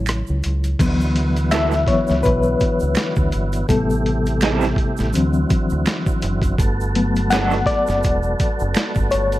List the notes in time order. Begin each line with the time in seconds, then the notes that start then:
Already playing: A1 C#3 F#3 E4 C#5
0.06 finger snap, cross-stick, closed hi-hat, shaker
0.27 C#2, shaker
0.43 C#2, closed hi-hat, shaker
0.64 closed hi-hat, shaker
0.79 D2 D3 E3 F#3 B3 E4 F#4, kick, closed hi-hat, crash, shaker
1.01 shaker
1.16 closed hi-hat
1.36 closed hi-hat, shaker
1.51 F#3 B3 E4 A4 E5, finger snap, snare, closed hi-hat, shaker
1.71 snare, shaker
1.87 E3 F#3 B3 C#5, muted fingered electric bass stroke, kick, snare, closed hi-hat
2.07 C#2, snare, shaker
2.23 B1 B4, kick, closed hi-hat, shaker
2.43 shaker
2.60 kick, closed hi-hat, shaker
2.80 C#2, shaker
2.95 finger snap, snare, closed hi-hat, shaker
3.16 D2, kick, shaker
3.32 G1, closed hi-hat, shaker
3.53 closed hi-hat, shaker
3.69 A1 C3 G3 A3 B3 E4 G4 A4, kick, closed hi-hat, shaker
3.90 shaker
4.06 closed hi-hat
4.26 closed hi-hat, shaker
4.41 G3 C4 E4 A4, finger snap, snare, closed hi-hat, shaker
4.61 snare, shaker
4.76 muted fingered electric bass stroke, kick, closed hi-hat
4.97 A1, snare, shaker
5.13 D2 D3 E3 F#3 C4 F#4, closed hi-hat, shaker
5.33 shaker
5.50 kick, closed hi-hat, shaker
5.70 D2, shaker
5.86 finger snap, snare, closed hi-hat, shaker
6.06 kick, shaker
6.22 F#1, closed hi-hat, shaker
6.42 kick, closed hi-hat, shaker
6.58 G1 A3 B3 A4, kick, closed hi-hat, shaker
6.80 shaker
6.95 F#3 A3 B3, closed hi-hat
7.15 closed hi-hat, shaker
7.30 F#3 B3 D4 A4 F#5, finger snap, snare, closed hi-hat, shaker
7.51 snare, shaker
7.66 D5, kick, snare, closed hi-hat
7.87 F#1, snare, shaker
8.03 E1, kick, closed hi-hat, shaker
8.23 shaker
8.39 kick, closed hi-hat, shaker
8.59 F#1, shaker
8.74 finger snap, snare, closed hi-hat, shaker
8.95 G1, kick, shaker
9.11 G1 C#5, closed hi-hat, shaker
9.32 closed hi-hat, shaker